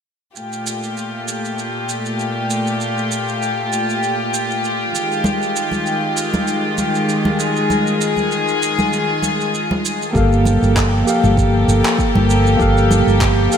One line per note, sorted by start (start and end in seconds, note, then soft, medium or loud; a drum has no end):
0.35 4.91 A#2 medium
0.35 4.91 A3 medium
0.35 10.11 F4 medium
0.35 7.36 G4 medium
0.35 shaker soft
0.53 shaker soft
0.67 shaker medium
0.83 shaker soft
0.97 shaker soft
1.28 shaker medium
1.45 shaker soft
1.59 shaker soft
1.89 shaker medium
2.06 shaker soft
2.19 shaker soft
2.50 shaker medium
2.67 shaker soft
2.81 shaker soft
2.98 shaker soft
3.12 shaker medium
3.28 shaker soft
3.42 shaker soft
3.73 shaker medium
3.90 shaker soft
4.03 shaker soft
4.34 shaker medium
4.51 shaker soft
4.64 shaker soft
4.94 10.11 D#3 medium
4.94 10.11 G#3 medium
4.94 shaker medium
5.12 shaker soft
5.24 high conga medium
5.24 shaker soft
5.42 shaker soft
5.56 shaker medium
5.72 high conga medium
5.72 shaker soft
5.86 shaker soft
6.17 shaker medium
6.34 high conga medium
6.34 shaker soft
6.47 shaker soft
6.78 high conga medium
6.78 shaker medium
6.95 shaker soft
7.09 shaker soft
7.25 high conga medium
7.40 10.12 G#4 medium
7.40 shaker medium
7.57 shaker soft
7.70 high conga medium
7.70 shaker soft
7.87 shaker soft
8.01 shaker medium
8.17 high conga medium
8.17 shaker soft
8.32 shaker soft
8.48 shaker soft
8.62 shaker medium
8.79 high conga medium
8.79 shaker soft
8.93 shaker soft
9.22 high conga medium
9.22 shaker medium
9.41 shaker soft
9.55 shaker soft
9.71 high conga medium
9.85 shaker medium
10.02 shaker soft
10.13 10.56 G1 medium
10.13 13.58 F3 medium
10.13 11.03 A#3 medium
10.13 13.58 A#3 medium
10.13 11.03 G4 medium
10.13 13.58 G4 medium
10.13 13.58 A4 medium
10.13 11.04 A4 medium
10.13 kick medium
10.13 shaker soft
10.17 11.05 F5 medium
10.32 shaker soft
10.45 high conga medium
10.45 shaker medium
10.62 11.02 G1 medium
10.62 shaker soft
10.76 kick medium
10.76 clap medium
10.76 shaker soft
11.05 12.56 A#3 medium
11.05 12.57 G4 medium
11.05 12.57 A4 medium
11.05 shaker medium
11.10 12.58 F5 medium
11.24 11.63 G1 medium
11.24 high conga medium
11.24 shaker soft
11.37 kick medium
11.37 shaker soft
11.68 11.81 G1 medium
11.68 shaker medium
11.85 clap medium
11.85 shaker soft
11.99 kick loud
11.99 shaker soft
12.15 12.55 G1 medium
12.15 high conga medium
12.30 shaker medium
12.47 shaker soft
12.57 13.01 G1 medium
12.57 13.47 A#3 medium
12.57 13.48 G4 medium
12.57 13.49 A4 medium
12.57 kick medium
12.57 shaker soft
12.62 13.49 F5 loud
12.77 shaker soft
12.91 high conga medium
12.91 shaker medium
13.07 13.46 G1 medium
13.07 shaker soft
13.21 kick loud
13.21 clap medium
13.21 shaker soft
13.49 13.58 A#3 medium
13.49 13.58 G4 medium
13.49 13.58 A4 medium
13.49 shaker medium
13.54 13.58 F5 medium